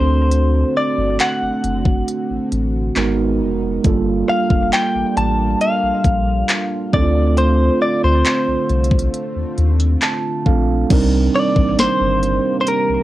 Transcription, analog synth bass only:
0, 0, Header, 1, 2, 480
1, 0, Start_track
1, 0, Tempo, 882353
1, 171, Time_signature, 4, 2, 24, 8
1, 7089, End_track
2, 0, Start_track
2, 0, Title_t, "Analog synth bass"
2, 0, Program_c, 0, 38
2, 0, Note_on_c, 0, 38, 102
2, 347, Note_off_c, 0, 38, 0
2, 534, Note_on_c, 0, 31, 102
2, 636, Note_off_c, 0, 31, 0
2, 774, Note_on_c, 0, 30, 50
2, 821, Note_off_c, 0, 30, 0
2, 893, Note_on_c, 0, 30, 96
2, 1100, Note_off_c, 0, 30, 0
2, 1253, Note_on_c, 0, 33, 50
2, 1300, Note_off_c, 0, 33, 0
2, 1373, Note_on_c, 0, 33, 89
2, 1580, Note_off_c, 0, 33, 0
2, 1613, Note_on_c, 0, 32, 95
2, 1853, Note_on_c, 0, 29, 87
2, 1861, Note_off_c, 0, 32, 0
2, 2060, Note_off_c, 0, 29, 0
2, 2093, Note_on_c, 0, 31, 101
2, 2300, Note_off_c, 0, 31, 0
2, 2451, Note_on_c, 0, 29, 88
2, 2555, Note_off_c, 0, 29, 0
2, 2693, Note_on_c, 0, 33, 48
2, 2741, Note_off_c, 0, 33, 0
2, 2814, Note_on_c, 0, 33, 89
2, 3020, Note_off_c, 0, 33, 0
2, 3173, Note_on_c, 0, 34, 47
2, 3221, Note_off_c, 0, 34, 0
2, 3290, Note_on_c, 0, 34, 82
2, 3498, Note_off_c, 0, 34, 0
2, 3772, Note_on_c, 0, 38, 95
2, 4187, Note_off_c, 0, 38, 0
2, 4374, Note_on_c, 0, 38, 94
2, 4477, Note_off_c, 0, 38, 0
2, 4614, Note_on_c, 0, 36, 48
2, 4661, Note_off_c, 0, 36, 0
2, 4732, Note_on_c, 0, 36, 89
2, 4939, Note_off_c, 0, 36, 0
2, 5092, Note_on_c, 0, 39, 49
2, 5140, Note_off_c, 0, 39, 0
2, 5213, Note_on_c, 0, 39, 89
2, 5420, Note_off_c, 0, 39, 0
2, 5692, Note_on_c, 0, 34, 85
2, 5899, Note_off_c, 0, 34, 0
2, 5933, Note_on_c, 0, 36, 116
2, 6140, Note_off_c, 0, 36, 0
2, 6289, Note_on_c, 0, 33, 102
2, 6394, Note_off_c, 0, 33, 0
2, 6414, Note_on_c, 0, 31, 50
2, 6461, Note_off_c, 0, 31, 0
2, 6533, Note_on_c, 0, 31, 92
2, 6740, Note_off_c, 0, 31, 0
2, 7014, Note_on_c, 0, 36, 49
2, 7061, Note_off_c, 0, 36, 0
2, 7089, End_track
0, 0, End_of_file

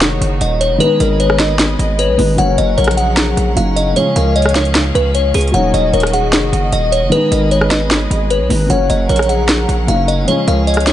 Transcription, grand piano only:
0, 0, Header, 1, 2, 480
1, 0, Start_track
1, 0, Tempo, 394737
1, 978, Time_signature, 4, 2, 24, 8
1, 13290, End_track
2, 0, Start_track
2, 0, Title_t, "Grand piano"
2, 0, Program_c, 0, 0
2, 0, Control_c, 0, 64, 127
2, 0, Note_on_c, 0, 54, 66
2, 0, Note_on_c, 0, 58, 64
2, 0, Note_on_c, 0, 61, 64
2, 0, Note_on_c, 0, 63, 74
2, 924, Note_off_c, 0, 54, 0
2, 935, Note_off_c, 0, 58, 0
2, 947, Note_off_c, 0, 61, 0
2, 951, Note_on_c, 0, 51, 75
2, 959, Note_off_c, 0, 63, 0
2, 974, Note_on_c, 0, 56, 64
2, 996, Control_c, 0, 64, 0
2, 997, Note_on_c, 0, 59, 64
2, 1020, Note_on_c, 0, 63, 76
2, 1214, Control_c, 0, 64, 127
2, 2611, Note_off_c, 0, 51, 0
2, 2622, Note_off_c, 0, 56, 0
2, 2634, Note_off_c, 0, 59, 0
2, 2645, Note_on_c, 0, 51, 52
2, 2646, Note_off_c, 0, 63, 0
2, 2657, Note_on_c, 0, 56, 46
2, 2669, Note_on_c, 0, 59, 46
2, 2680, Note_on_c, 0, 63, 60
2, 2860, Note_on_c, 0, 49, 66
2, 2882, Note_on_c, 0, 54, 62
2, 2892, Note_off_c, 0, 51, 0
2, 2897, Note_off_c, 0, 56, 0
2, 2903, Note_off_c, 0, 59, 0
2, 2905, Note_on_c, 0, 58, 62
2, 2909, Note_off_c, 0, 63, 0
2, 2912, Control_c, 0, 64, 0
2, 2928, Note_on_c, 0, 61, 73
2, 3139, Control_c, 0, 64, 127
2, 4290, Note_off_c, 0, 49, 0
2, 4301, Note_off_c, 0, 54, 0
2, 4313, Note_off_c, 0, 58, 0
2, 4317, Note_on_c, 0, 49, 52
2, 4324, Note_off_c, 0, 61, 0
2, 4329, Note_on_c, 0, 54, 51
2, 4340, Note_on_c, 0, 58, 51
2, 4351, Note_on_c, 0, 63, 58
2, 4766, Note_off_c, 0, 49, 0
2, 4784, Note_on_c, 0, 49, 68
2, 4807, Note_on_c, 0, 53, 60
2, 4813, Note_off_c, 0, 54, 0
2, 4819, Note_off_c, 0, 58, 0
2, 4825, Note_off_c, 0, 63, 0
2, 4829, Note_on_c, 0, 56, 64
2, 4831, Control_c, 0, 64, 0
2, 4852, Note_on_c, 0, 61, 78
2, 5015, Control_c, 0, 64, 127
2, 6682, Note_off_c, 0, 49, 0
2, 6694, Note_off_c, 0, 53, 0
2, 6705, Note_off_c, 0, 56, 0
2, 6706, Note_on_c, 0, 54, 69
2, 6717, Note_off_c, 0, 61, 0
2, 6730, Note_on_c, 0, 58, 66
2, 6752, Note_on_c, 0, 61, 64
2, 6753, Control_c, 0, 64, 0
2, 6775, Note_on_c, 0, 63, 72
2, 6997, Control_c, 0, 64, 127
2, 8603, Note_off_c, 0, 54, 0
2, 8615, Note_off_c, 0, 58, 0
2, 8627, Note_off_c, 0, 61, 0
2, 8631, Note_on_c, 0, 51, 73
2, 8638, Note_off_c, 0, 63, 0
2, 8653, Note_on_c, 0, 56, 62
2, 8672, Control_c, 0, 64, 0
2, 8676, Note_on_c, 0, 59, 61
2, 8698, Note_on_c, 0, 63, 75
2, 8917, Control_c, 0, 64, 127
2, 10290, Note_off_c, 0, 51, 0
2, 10302, Note_off_c, 0, 56, 0
2, 10314, Note_off_c, 0, 59, 0
2, 10325, Note_off_c, 0, 63, 0
2, 10326, Note_on_c, 0, 51, 53
2, 10337, Note_on_c, 0, 56, 47
2, 10349, Note_on_c, 0, 59, 46
2, 10359, Note_on_c, 0, 63, 58
2, 10541, Note_on_c, 0, 49, 64
2, 10564, Note_on_c, 0, 54, 62
2, 10572, Note_off_c, 0, 51, 0
2, 10577, Note_off_c, 0, 56, 0
2, 10583, Note_off_c, 0, 59, 0
2, 10586, Note_on_c, 0, 58, 62
2, 10589, Note_off_c, 0, 63, 0
2, 10591, Control_c, 0, 64, 0
2, 10609, Note_on_c, 0, 61, 73
2, 10838, Control_c, 0, 64, 127
2, 11970, Note_off_c, 0, 49, 0
2, 11982, Note_off_c, 0, 54, 0
2, 11994, Note_off_c, 0, 58, 0
2, 11999, Note_on_c, 0, 49, 51
2, 12005, Note_off_c, 0, 61, 0
2, 12010, Note_on_c, 0, 54, 51
2, 12022, Note_on_c, 0, 58, 53
2, 12033, Note_on_c, 0, 63, 57
2, 12447, Note_off_c, 0, 49, 0
2, 12465, Note_on_c, 0, 49, 71
2, 12488, Note_on_c, 0, 53, 61
2, 12494, Note_off_c, 0, 54, 0
2, 12500, Note_off_c, 0, 58, 0
2, 12506, Note_off_c, 0, 63, 0
2, 12511, Note_on_c, 0, 56, 63
2, 12512, Control_c, 0, 64, 0
2, 12534, Note_on_c, 0, 61, 79
2, 12721, Control_c, 0, 64, 127
2, 13290, Note_off_c, 0, 49, 0
2, 13290, Note_off_c, 0, 53, 0
2, 13290, Note_off_c, 0, 56, 0
2, 13290, Note_off_c, 0, 61, 0
2, 13290, End_track
0, 0, End_of_file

